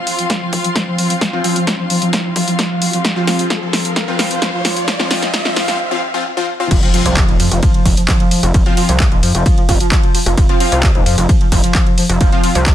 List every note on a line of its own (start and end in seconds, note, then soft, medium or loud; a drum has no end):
0.00 5.79 C4 medium
0.00 5.79 F4 medium
0.00 5.79 F5 medium
0.00 5.79 C6 medium
0.00 riser medium
0.07 0.10 F3 medium
0.07 open hi-hat medium
0.19 0.24 F3 medium
0.19 closed hi-hat medium
0.30 0.39 F3 medium
0.30 kick loud
0.30 snare medium
0.30 closed hi-hat medium
0.42 0.50 F3 medium
0.53 0.56 F3 medium
0.53 kick medium
0.53 open hi-hat loud
0.64 0.68 F3 medium
0.64 closed hi-hat medium
0.76 0.81 F3 medium
0.76 kick loud
0.76 snare medium
0.76 closed hi-hat medium
0.87 0.96 F3 medium
0.98 1.07 F3 medium
0.98 open hi-hat medium
1.10 1.14 F3 medium
1.10 closed hi-hat medium
1.21 1.25 F3 medium
1.21 kick loud
1.21 snare medium
1.21 closed hi-hat medium
1.33 1.43 F3 medium
1.33 1.39 F3 medium
1.33 1.43 C4 medium
1.33 1.43 F4 medium
1.44 1.57 F3 medium
1.44 1.53 F3 medium
1.44 1.57 C4 medium
1.44 1.57 F4 medium
1.44 open hi-hat loud
1.56 1.64 F3 medium
1.56 closed hi-hat medium
1.67 1.71 F3 medium
1.67 kick loud
1.67 snare medium
1.67 closed hi-hat medium
1.79 1.82 F3 medium
1.90 1.96 F3 medium
1.90 open hi-hat medium
2.02 2.10 F3 medium
2.02 closed hi-hat medium
2.13 2.22 F3 medium
2.13 kick loud
2.13 snare medium
2.13 closed hi-hat medium
2.25 2.28 F3 medium
2.36 2.39 F3 medium
2.36 kick medium
2.36 open hi-hat loud
2.48 2.53 F3 medium
2.48 closed hi-hat medium
2.59 2.68 F3 medium
2.59 kick loud
2.59 snare medium
2.59 closed hi-hat medium
2.71 2.79 F3 medium
2.82 2.85 F3 medium
2.82 open hi-hat loud
2.93 2.97 F3 medium
2.93 closed hi-hat medium
3.05 3.10 F3 medium
3.05 kick loud
3.05 snare medium
3.05 closed hi-hat medium
3.16 3.26 F3 medium
3.16 3.25 F3 medium
3.16 3.26 C4 medium
3.16 3.26 F4 medium
3.27 3.48 F3 medium
3.27 3.36 F3 medium
3.27 3.48 C4 medium
3.27 3.48 F4 loud
3.27 snare medium
3.27 open hi-hat loud
3.39 3.43 F3 medium
3.39 closed hi-hat medium
3.50 3.54 F3 medium
3.50 kick loud
3.50 snare medium
3.50 closed hi-hat medium
3.62 3.68 F3 medium
3.73 3.82 F3 medium
3.73 snare medium
3.73 open hi-hat medium
3.85 3.93 F3 medium
3.85 closed hi-hat medium
3.96 4.02 F3 medium
3.96 kick loud
3.96 snare medium
3.96 closed hi-hat medium
4.08 4.17 F3 medium
4.08 4.16 F3 medium
4.08 4.17 C4 medium
4.08 4.17 F4 medium
4.19 4.39 F3 medium
4.19 4.28 F3 medium
4.19 4.39 C4 medium
4.19 4.39 F4 loud
4.19 kick medium
4.19 snare medium
4.19 open hi-hat loud
4.31 4.34 F3 medium
4.31 closed hi-hat medium
4.42 4.46 F3 medium
4.42 kick loud
4.42 snare medium
4.42 closed hi-hat medium
4.54 4.59 F3 medium
4.65 4.74 F3 medium
4.65 snare medium
4.65 open hi-hat loud
4.77 4.85 F3 medium
4.77 closed hi-hat medium
4.88 4.94 F3 medium
4.88 kick loud
4.88 snare medium
4.88 closed hi-hat medium
4.99 5.08 F3 medium
4.99 5.09 F3 medium
4.99 5.09 C4 medium
4.99 5.09 F4 medium
4.99 snare medium
5.11 5.19 F3 medium
5.11 5.31 F3 medium
5.11 5.31 C4 medium
5.11 5.31 F4 loud
5.11 snare medium
5.11 open hi-hat loud
5.22 5.26 F3 medium
5.22 snare medium
5.22 closed hi-hat medium
5.34 5.39 F3 medium
5.34 kick loud
5.34 snare loud
5.34 closed hi-hat medium
5.45 5.55 F3 medium
5.45 5.54 F3 medium
5.45 5.55 C4 medium
5.45 5.55 F4 medium
5.45 snare medium
5.56 5.76 F3 loud
5.56 5.65 F3 medium
5.56 5.77 C4 medium
5.56 5.77 F4 loud
5.56 snare loud
5.56 open hi-hat medium
5.68 5.72 F3 medium
5.68 snare medium
5.68 closed hi-hat medium
5.91 6.01 F3 medium
5.91 6.01 C4 medium
5.91 6.01 F4 loud
6.14 6.23 F3 medium
6.14 6.23 C4 medium
6.14 6.23 F4 loud
6.37 6.46 F3 medium
6.37 6.46 C4 medium
6.37 6.46 F4 loud
6.60 6.69 F3 medium
6.60 6.69 C4 medium
6.60 6.69 F4 loud
6.71 6.81 F1 loud
6.71 6.75 F3 medium
6.71 kick loud
6.71 closed hi-hat medium
6.71 crash loud
6.71 ride medium
6.71 impact medium
6.83 6.92 F3 medium
6.83 6.86 F3 medium
6.83 6.92 C4 medium
6.83 6.92 F4 medium
6.83 ride medium
6.94 7.14 F3 loud
6.94 7.00 F3 medium
6.94 7.14 C4 medium
6.94 7.14 F4 loud
6.94 open hi-hat loud
6.94 ride medium
7.06 7.25 C2 medium
7.06 7.14 F3 medium
7.06 closed hi-hat medium
7.06 ride medium
7.17 7.26 F3 medium
7.17 kick loud
7.17 clap loud
7.17 closed hi-hat medium
7.17 ride medium
7.29 7.38 D#1 loud
7.29 7.32 F3 medium
7.29 ride medium
7.40 7.50 F2 loud
7.40 7.43 F3 medium
7.40 open hi-hat loud
7.40 ride medium
7.51 7.61 F1 medium
7.51 7.57 F3 medium
7.51 closed hi-hat medium
7.51 ride medium
7.63 7.71 F3 medium
7.63 kick loud
7.63 closed hi-hat medium
7.63 ride medium
7.74 7.83 F3 medium
7.74 ride medium
7.86 7.95 F1 medium
7.86 7.89 F3 medium
7.86 kick medium
7.86 open hi-hat loud
7.86 ride medium
7.97 8.01 F3 medium
7.97 closed hi-hat medium
7.97 ride medium
8.08 8.14 F3 medium
8.08 kick loud
8.08 clap loud
8.08 closed hi-hat medium
8.08 ride medium
8.20 8.29 F3 medium
8.20 ride medium
8.31 8.40 F3 medium
8.31 open hi-hat loud
8.31 ride medium
8.43 8.52 F1 loud
8.43 8.46 F3 medium
8.43 closed hi-hat medium
8.43 ride medium
8.54 8.64 F1 loud
8.54 8.58 F3 medium
8.54 kick loud
8.54 closed hi-hat medium
8.54 ride medium
8.66 8.76 F3 medium
8.66 8.72 F3 medium
8.66 8.76 C4 medium
8.66 8.76 F4 medium
8.66 ride medium
8.77 8.90 F3 medium
8.77 8.86 F3 medium
8.77 8.90 C4 medium
8.77 8.90 F4 medium
8.77 open hi-hat loud
8.77 ride medium
8.89 9.08 C2 loud
8.89 8.97 F3 medium
8.89 closed hi-hat medium
8.89 ride medium
9.00 9.04 F3 medium
9.00 kick loud
9.00 clap loud
9.00 closed hi-hat medium
9.00 ride medium
9.12 9.21 D#1 loud
9.12 9.15 F3 medium
9.12 ride medium
9.23 9.33 F2 loud
9.23 9.29 F3 medium
9.23 open hi-hat loud
9.23 ride medium
9.35 9.44 F1 medium
9.35 9.43 F3 medium
9.35 closed hi-hat medium
9.35 ride medium
9.46 9.55 F3 medium
9.46 kick loud
9.46 closed hi-hat medium
9.46 ride medium
9.58 9.61 F3 medium
9.58 ride medium
9.69 9.79 F1 medium
9.69 9.72 F3 medium
9.69 kick medium
9.69 open hi-hat loud
9.69 ride medium
9.80 9.86 F3 medium
9.80 closed hi-hat medium
9.80 ride medium
9.92 10.00 F3 medium
9.92 kick loud
9.92 clap loud
9.92 closed hi-hat medium
9.92 ride medium
10.03 10.12 F3 medium
10.03 ride medium
10.15 10.18 F3 medium
10.15 open hi-hat loud
10.15 ride medium
10.26 10.36 F1 loud
10.26 10.30 F3 medium
10.26 closed hi-hat medium
10.26 ride medium
10.37 10.47 F1 loud
10.37 10.43 F3 medium
10.37 kick loud
10.37 closed hi-hat medium
10.37 ride medium
10.49 10.57 F3 medium
10.49 10.59 F3 medium
10.49 10.59 C4 medium
10.49 10.59 F4 medium
10.49 ride medium
10.60 10.69 F3 medium
10.60 10.80 F3 loud
10.60 10.80 C4 medium
10.60 10.80 F4 loud
10.60 open hi-hat loud
10.60 ride medium
10.72 10.91 C2 medium
10.72 10.75 F3 medium
10.72 closed hi-hat medium
10.72 ride medium
10.83 10.87 F3 medium
10.83 kick loud
10.83 clap loud
10.83 closed hi-hat medium
10.83 ride medium
10.95 11.04 D#1 loud
10.95 11.00 F3 medium
10.95 ride medium
11.06 11.16 F2 loud
11.06 11.15 F3 medium
11.06 open hi-hat loud
11.06 ride medium
11.18 11.27 F1 medium
11.18 11.26 F3 medium
11.18 closed hi-hat medium
11.18 ride medium
11.29 11.33 F3 medium
11.29 kick loud
11.29 closed hi-hat medium
11.29 ride medium
11.41 11.44 F3 medium
11.41 ride medium
11.52 11.62 F1 medium
11.52 11.58 F3 medium
11.52 kick medium
11.52 open hi-hat loud
11.52 ride medium
11.64 11.72 F3 medium
11.64 closed hi-hat medium
11.64 ride medium
11.75 11.84 F3 medium
11.75 kick loud
11.75 clap loud
11.75 closed hi-hat medium
11.75 ride medium
11.87 11.90 F3 medium
11.87 ride medium
11.98 12.01 F3 medium
11.98 open hi-hat loud
11.98 ride medium
12.09 12.19 F1 loud
12.09 12.15 F3 medium
12.09 closed hi-hat medium
12.09 ride medium
12.21 12.31 F1 loud
12.21 12.29 F3 medium
12.21 kick loud
12.21 closed hi-hat medium
12.21 ride medium
12.32 12.42 F3 medium
12.32 12.41 F3 medium
12.32 12.42 C4 medium
12.32 12.42 F4 loud
12.32 ride medium
12.44 12.47 F3 medium
12.44 12.56 F3 medium
12.44 12.56 C4 medium
12.44 12.56 F4 medium
12.44 open hi-hat loud
12.44 ride medium
12.55 12.74 C2 medium
12.55 12.59 F3 medium
12.55 closed hi-hat medium
12.55 ride medium
12.66 12.72 F3 medium
12.66 kick loud
12.66 clap loud
12.66 closed hi-hat medium
12.66 ride medium